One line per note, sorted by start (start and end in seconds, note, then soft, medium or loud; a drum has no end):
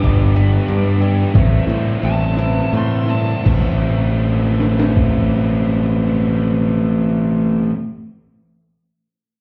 0.00 0.56 G1 medium
0.00 1.01 G3 medium
0.00 0.36 B3 medium
0.00 1.34 B3 medium
0.00 1.00 E4 medium
0.00 1.18 D6 medium
0.00 kick medium
0.00 closed hi-hat medium
0.04 0.35 D4 medium
0.04 0.33 G4 medium
0.35 1.33 B3 medium
0.35 1.01 D4 medium
0.35 1.00 G4 medium
0.35 1.35 B4 medium
0.35 closed hi-hat medium
0.68 1.23 G2 medium
0.68 1.34 D5 medium
0.68 closed hi-hat soft
1.01 1.33 D4 medium
1.01 2.36 E4 medium
1.01 1.32 G4 medium
1.01 closed hi-hat medium
1.33 1.62 A1 medium
1.33 1.99 E3 medium
1.33 2.01 A3 medium
1.33 1.67 C4 medium
1.33 1.64 E4 medium
1.33 kick loud
1.33 closed hi-hat medium
1.66 1.96 A2 medium
1.66 3.07 C4 medium
1.66 2.00 C4 medium
1.66 2.01 E4 medium
1.66 closed hi-hat medium
2.00 2.61 A1 medium
2.00 2.38 E3 medium
2.00 3.45 A3 medium
2.00 2.37 C4 medium
2.00 2.36 E4 medium
2.00 closed hi-hat soft
2.05 2.72 A5 medium
2.36 3.43 E3 medium
2.36 3.08 C4 medium
2.36 3.46 E4 medium
2.36 3.05 E4 medium
2.36 closed hi-hat medium
2.73 3.33 A2 medium
2.73 3.46 A4 medium
2.73 closed hi-hat soft
2.77 3.10 C6 medium
3.07 3.46 C4 medium
3.07 3.44 C4 soft
3.07 3.43 E4 medium
3.07 3.46 A5 medium
3.07 closed hi-hat medium
3.44 7.70 A1 medium
3.44 7.72 A2 medium
3.44 7.72 E3 medium
3.44 7.73 E3 medium
3.44 7.74 A3 medium
3.44 7.74 C4 medium
3.44 7.75 C4 medium
3.44 7.75 E4 medium
3.44 kick medium
3.44 crash medium
4.60 snare soft
4.79 snare medium
4.97 kick medium